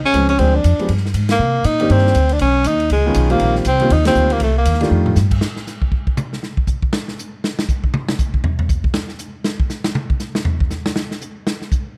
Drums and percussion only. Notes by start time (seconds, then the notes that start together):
0.14 hi-hat pedal, ride
0.29 ride
0.39 ride
0.64 hi-hat pedal, ride
0.79 ride
0.89 ride
0.97 snare
1.06 snare
1.14 hi-hat pedal, ride
1.29 snare, ride
1.64 hi-hat pedal, ride
1.80 ride
1.90 ride
1.98 snare
2.07 snare
2.15 hi-hat pedal, ride
2.29 ride
2.39 ride
2.64 hi-hat pedal, ride
2.80 ride
2.90 ride
3.14 hi-hat pedal, ride
3.30 ride
3.40 ride
3.55 snare
3.65 hi-hat pedal, ride
3.80 ride
3.90 ride
4.05 snare, ride
4.15 hi-hat pedal
4.30 ride
4.40 ride
4.65 hi-hat pedal, ride
4.74 snare
4.81 snare, ride
5.06 mid tom
5.16 snare, hi-hat pedal
5.31 kick, crash
5.41 snare
5.56 snare
5.67 snare, hi-hat pedal
5.82 kick
5.92 kick
6.07 kick
6.17 hi-hat pedal, high tom
6.33 snare
6.43 snare
6.57 kick
6.67 kick, hi-hat pedal
6.82 kick
6.93 snare
7.08 snare
7.19 hi-hat pedal
7.44 snare
7.59 snare
7.69 kick, hi-hat pedal
7.84 kick
7.94 high tom
8.09 snare
8.19 kick, hi-hat pedal
8.34 kick
8.44 floor tom
8.59 floor tom
8.69 kick, hi-hat pedal
8.84 kick
8.94 snare
9.09 snare
9.19 hi-hat pedal
9.44 snare
9.60 kick
9.70 snare, hi-hat pedal
9.84 snare
9.95 high tom
10.10 kick
10.20 snare, hi-hat pedal
10.35 snare
10.45 floor tom
10.60 kick
10.71 snare, hi-hat pedal
10.86 snare
10.96 snare
11.11 snare
11.21 hi-hat pedal
11.47 snare
11.62 snare
11.72 kick, hi-hat pedal